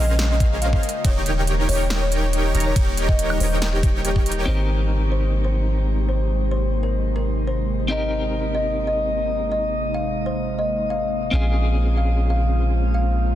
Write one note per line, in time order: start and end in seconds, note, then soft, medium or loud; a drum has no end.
0.00 0.80 A#1 loud
0.00 4.43 C#3 medium
0.00 0.79 G#3 medium
0.00 4.43 A#3 medium
0.00 0.82 C#4 medium
0.00 0.80 F4 medium
0.00 0.82 G#4 medium
0.00 0.82 A#4 medium
0.00 0.79 C5 medium
0.00 0.82 C5 medium
0.00 0.14 D#5 loud
0.00 0.82 F5 medium
0.19 snare loud
0.19 closed hi-hat medium
0.19 ride soft
0.30 0.46 D#5 loud
0.40 kick loud
0.40 closed hi-hat medium
0.62 0.83 F5 loud
0.62 closed hi-hat medium
0.73 kick medium
0.83 4.44 G3 medium
0.83 4.44 D#4 medium
0.83 4.44 G4 medium
0.83 closed hi-hat soft
0.89 closed hi-hat medium
1.05 1.67 D#1 loud
1.05 1.66 D#4 loud
1.05 1.66 G4 medium
1.05 1.66 A#4 medium
1.05 1.66 C#5 loud
1.05 1.21 C#5 loud
1.05 1.66 G5 loud
1.05 kick loud
1.05 closed hi-hat medium
1.05 ride soft
1.26 closed hi-hat medium
1.47 closed hi-hat medium
1.69 2.52 D#1 loud
1.69 2.52 D#4 medium
1.69 2.52 G4 medium
1.69 2.52 A#4 medium
1.69 1.85 C#5 loud
1.69 2.52 C#5 medium
1.69 2.52 G5 medium
1.69 open hi-hat loud
1.90 snare loud
1.90 closed hi-hat medium
1.90 ride soft
2.02 2.18 C#5 loud
2.12 closed hi-hat medium
2.33 closed hi-hat medium
2.55 2.74 D#1 loud
2.55 2.74 D#4 medium
2.55 2.74 G4 medium
2.55 2.74 A#4 medium
2.55 2.74 C#5 medium
2.55 2.74 A#5 loud
2.55 closed hi-hat medium
2.60 closed hi-hat medium
2.66 2.87 C#5 loud
2.76 3.38 D#1 loud
2.76 3.38 D#4 medium
2.76 3.38 G4 medium
2.76 3.38 A#4 medium
2.76 3.38 C#5 medium
2.76 3.38 G5 medium
2.76 kick loud
2.76 closed hi-hat medium
2.76 ride soft
2.97 closed hi-hat medium
3.09 3.25 D#5 loud
3.09 kick medium
3.19 closed hi-hat medium
3.30 high woodblock medium
3.40 4.45 D#1 loud
3.40 4.45 D#4 medium
3.40 4.45 G4 medium
3.40 4.45 A#4 medium
3.40 3.57 C5 loud
3.40 4.45 C#5 medium
3.40 4.45 G5 medium
3.40 open hi-hat loud
3.62 snare loud
3.62 closed hi-hat medium
3.62 ride soft
3.73 3.89 G4 loud
3.83 kick loud
3.83 closed hi-hat medium
4.05 4.26 G4 loud
4.05 closed hi-hat medium
4.16 kick medium
4.26 closed hi-hat medium
4.32 closed hi-hat medium
4.46 11.31 G#1 medium
4.46 11.29 C3 medium
4.46 11.29 G#3 medium
4.46 13.35 A#3 medium
4.46 7.87 C4 medium
4.46 7.88 D#4 medium
4.46 11.29 D#4 medium
4.46 7.87 G4 medium
4.46 7.88 G4 medium
4.46 4.64 C5 medium
4.50 7.89 A#4 medium
5.12 5.28 C5 medium
5.44 5.60 C5 medium
6.09 6.30 C5 medium
6.51 6.67 C5 medium
6.83 7.00 A#4 medium
7.16 7.32 A#4 medium
7.47 7.69 C5 medium
7.88 11.30 C4 medium
7.88 11.30 D#4 medium
7.88 11.31 G4 medium
7.88 8.07 D#5 medium
7.92 11.32 A#4 medium
8.55 8.71 D#5 medium
8.87 9.03 D#5 medium
9.52 9.73 D#5 medium
9.94 10.10 F5 medium
10.26 10.43 C5 medium
10.59 10.75 D#5 medium
10.90 11.12 F5 medium
11.31 13.35 A#1 medium
11.31 13.35 C#3 medium
11.31 13.35 G#3 medium
11.31 13.35 C4 medium
11.31 13.35 C#4 medium
11.31 13.35 F4 medium
11.31 13.35 C5 medium
11.31 11.50 F5 medium
11.35 13.35 G#4 medium
11.97 12.14 F5 medium
12.30 12.46 F5 medium
12.94 13.16 F5 medium